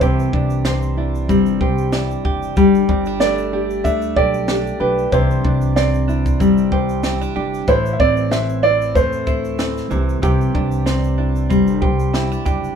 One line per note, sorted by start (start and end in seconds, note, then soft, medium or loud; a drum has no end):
0.00 0.28 C2 loud
0.00 2.57 C3 medium
0.00 2.57 E3 medium
0.00 0.33 C4 medium
0.00 0.37 C4 medium
0.00 0.33 E4 medium
0.00 0.36 E4 medium
0.00 1.61 G4 medium
0.00 0.36 C5 medium
0.00 1.89 C5 medium
0.00 kick loud
0.00 shaker medium
0.19 shaker soft
0.33 1.31 C2 medium
0.33 2.25 D4 medium
0.33 0.97 D4 medium
0.33 kick medium
0.50 shaker medium
0.65 1.28 C4 medium
0.65 1.60 C5 medium
0.65 snare loud
0.65 shaker medium
0.82 shaker medium
0.97 1.93 D4 medium
0.97 1.92 E4 medium
1.15 shaker medium
1.29 1.62 G1 medium
1.29 2.56 G3 medium
1.29 2.64 C4 medium
1.29 kick medium
1.29 shaker medium
1.46 shaker medium
1.61 2.13 C2 medium
1.61 2.25 G4 medium
1.61 2.64 C5 medium
1.61 kick medium
1.78 shaker medium
1.92 2.88 D4 medium
1.92 2.64 E4 medium
1.92 snare loud
1.92 shaker medium
2.11 shaker soft
2.25 2.51 F#1 medium
2.25 2.88 D4 medium
2.25 2.57 G4 medium
2.25 kick medium
2.42 shaker soft
2.57 2.83 G1 medium
2.57 6.07 G3 medium
2.57 5.12 G3 medium
2.57 4.17 G4 medium
2.57 kick loud
2.57 shaker medium
2.75 shaker medium
2.89 3.81 G1 loud
2.89 3.07 C4 medium
2.89 3.84 D4 medium
2.89 kick medium
3.05 3.52 D4 soft
3.05 shaker medium
3.20 3.84 A3 medium
3.20 4.16 A4 medium
3.20 3.86 D5 medium
3.20 snare loud
3.20 shaker medium
3.38 shaker medium
3.53 4.48 D4 medium
3.53 4.49 G4 medium
3.70 shaker soft
3.84 4.11 D2 medium
3.84 5.20 A3 medium
3.84 4.80 D4 medium
3.84 4.17 E5 loud
3.84 kick medium
3.84 shaker medium
4.02 shaker medium
4.16 4.69 B1 medium
4.16 4.80 G4 medium
4.16 5.20 A4 medium
4.16 4.82 D5 medium
4.16 kick medium
4.34 shaker medium
4.48 5.44 D4 medium
4.48 6.08 G4 medium
4.48 snare loud
4.48 shaker medium
4.67 shaker soft
4.80 5.07 B1 medium
4.80 5.45 D4 medium
4.80 5.13 G4 medium
4.80 5.13 B4 medium
4.98 shaker soft
5.12 5.39 C2 loud
5.12 7.67 C3 medium
5.12 7.67 E3 medium
5.12 6.71 G4 medium
5.12 5.78 C5 medium
5.12 kick loud
5.12 shaker medium
5.31 shaker medium
5.44 6.36 C2 medium
5.44 6.07 D4 medium
5.44 7.35 D4 medium
5.44 kick medium
5.61 shaker medium
5.76 6.40 C4 medium
5.76 6.72 C5 medium
5.76 6.68 D5 medium
5.76 snare loud
5.76 shaker medium
5.94 shaker medium
6.08 7.04 D4 medium
6.08 7.05 E4 medium
6.08 shaker medium
6.26 kick medium
6.26 shaker medium
6.40 6.66 G1 medium
6.40 7.75 G3 medium
6.40 7.04 C4 medium
6.40 kick medium
6.40 shaker medium
6.58 shaker medium
6.72 7.24 C2 medium
6.72 7.35 G4 medium
6.72 8.31 C5 medium
6.72 kick medium
6.89 shaker medium
7.03 7.21 C4 medium
7.03 8.63 E4 medium
7.03 snare loud
7.03 shaker medium
7.21 7.68 D4 medium
7.21 shaker soft
7.36 7.62 G1 medium
7.36 7.75 D4 medium
7.36 7.75 G4 medium
7.54 shaker medium
7.68 7.94 A1 loud
7.68 9.90 A2 medium
7.68 8.31 E3 medium
7.68 9.27 E4 medium
7.68 7.95 C5 loud
7.68 kick loud
7.68 shaker medium
7.86 shaker medium
7.93 8.00 E5 medium
8.00 8.91 A1 loud
8.00 8.62 C4 medium
8.00 10.54 C4 medium
8.00 8.29 D5 loud
8.00 kick medium
8.17 shaker medium
8.31 8.95 E3 medium
8.31 9.26 C5 medium
8.31 8.64 E5 loud
8.31 snare loud
8.31 shaker medium
8.49 shaker medium
8.63 9.58 C4 medium
8.63 9.58 E4 medium
8.63 8.93 D5 loud
8.81 shaker medium
8.95 9.27 E2 loud
8.95 9.90 E3 medium
8.95 9.98 A3 medium
8.95 10.27 C5 loud
8.95 kick medium
8.95 shaker medium
9.13 shaker medium
9.27 9.79 D2 loud
9.27 10.54 E4 medium
9.27 10.57 C5 medium
9.27 kick medium
9.27 shaker soft
9.44 shaker medium
9.59 10.58 C4 medium
9.59 10.57 E4 medium
9.59 snare loud
9.59 shaker medium
9.77 snare soft
9.77 shaker medium
9.91 10.17 C2 loud
9.91 10.21 C3 medium
9.91 10.21 E3 medium
9.91 shaker soft
10.09 shaker soft
10.22 10.49 C2 loud
10.22 12.75 C3 medium
10.22 12.75 E3 medium
10.22 11.81 G4 medium
10.22 12.10 G4 medium
10.22 kick loud
10.22 shaker medium
10.41 shaker soft
10.54 11.52 C2 loud
10.54 12.45 D4 medium
10.54 11.18 D4 medium
10.54 kick medium
10.72 shaker medium
10.86 11.48 C4 medium
10.86 11.81 C5 medium
10.86 snare loud
10.86 shaker medium
11.04 shaker medium
11.18 12.13 D4 medium
11.18 12.12 E4 medium
11.36 shaker medium
11.50 11.84 G1 medium
11.50 12.75 G3 medium
11.50 12.12 C4 medium
11.50 kick loud
11.50 shaker medium
11.67 shaker medium
11.82 12.34 C2 medium
11.82 12.45 G4 medium
11.82 12.75 C5 medium
11.82 kick medium
11.99 shaker medium
12.13 12.32 C4 medium
12.13 12.75 E4 medium
12.13 snare loud
12.13 shaker medium
12.32 12.75 D4 soft
12.32 shaker soft
12.46 12.72 F#1 medium
12.46 12.75 D4 medium
12.46 12.75 G4 medium
12.46 kick medium
12.46 shaker medium
12.64 shaker soft